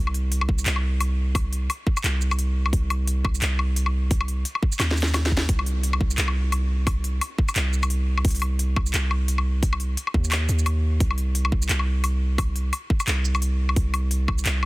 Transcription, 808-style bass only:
0.00 0.65 C2 loud
0.66 1.68 C2 medium
2.04 2.72 C2 medium
2.73 3.41 C2 loud
3.42 4.44 C2 loud
4.80 5.48 D#2 loud
5.49 6.17 C2 loud
6.18 7.20 C2 medium
7.56 8.24 C2 loud
8.25 8.92 C2 loud
8.94 9.96 C2 medium
10.14 10.48 D#2 loud
10.49 10.99 D#2 loud
11.00 11.68 C2 loud
11.69 12.72 C2 loud
13.07 13.75 C2 loud
13.76 14.44 C2 loud
14.45 14.66 C2 medium

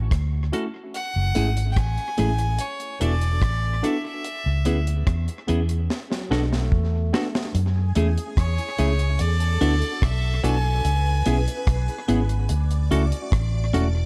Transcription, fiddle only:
0.95 1.66 F#5 loud
1.72 1.79 G5 medium
1.77 2.62 G#5 loud
2.61 3.01 C#5 medium
3.02 3.86 D5 loud
3.84 4.05 E5 medium
4.06 4.84 E5 medium
8.38 9.22 C#5 medium
9.20 10.04 D5 loud
10.02 10.44 E5 medium
10.44 12.05 G#5 loud

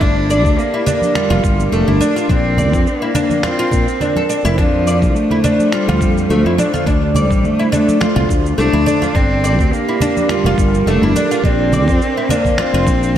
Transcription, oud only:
0.01 0.28 D4 medium
0.30 0.39 D5 medium
0.74 0.81 E4 medium
0.86 1.14 D4 loud
1.15 1.29 F4 medium
1.30 1.71 F4 loud
1.72 1.87 A3 medium
1.88 1.95 E4 medium
2.01 2.15 D4 medium
2.16 2.29 F4 medium
2.30 2.57 D4 medium
2.58 2.67 D5 medium
3.02 3.10 E4 medium
3.15 3.42 D4 loud
3.44 3.58 F4 medium
3.59 3.71 F4 medium
4.01 4.16 D4 medium
4.16 4.24 A4 medium
4.29 4.38 D4 medium
4.45 4.57 E4 loud
4.58 4.86 D4 medium
4.87 4.96 D5 medium
5.31 5.38 E4 medium
5.44 5.71 D4 loud
5.73 5.87 F4 medium
5.89 6.29 F4 medium
6.30 6.45 A3 medium
6.46 6.53 E4 medium
6.58 6.72 D4 medium
6.74 6.86 F4 medium
6.87 7.14 D4 medium
7.16 7.24 D5 medium
7.59 7.67 E4 medium
7.72 8.00 D4 medium
8.01 8.15 F4 medium
8.16 8.57 F4 medium
8.58 8.73 A3 medium
8.73 8.81 E4 medium
8.86 9.00 D4 loud
9.02 9.14 F4 medium
9.15 9.43 D4 medium
9.44 9.53 D5 medium
9.89 9.96 E4 medium
10.02 10.29 D4 loud
10.30 10.44 F4 medium
10.46 10.86 F4 loud
10.87 11.02 A3 medium
11.03 11.10 E4 medium
11.16 11.30 D4 medium
11.31 11.43 F4 medium
11.45 11.72 D4 medium
11.73 11.82 D5 medium
12.17 12.24 E4 medium
12.30 12.57 D4 loud
12.59 12.72 F4 medium
12.74 12.86 F4 medium

